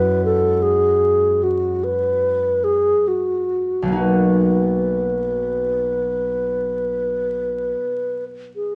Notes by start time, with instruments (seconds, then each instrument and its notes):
Already playing: harp F#2 F#3 G#3 E4 F#4, alto flute B4
0.25 alto flute A4
0.62 alto flute G#4
1.43 alto flute F#4
1.84 alto flute B4
2.64 alto flute G#4
3.08 alto flute F#4
3.82 harp B1 F#3
3.88 harp A#3 D#4
3.95 harp F#4
3.99 alto flute B4
8.56 alto flute G#4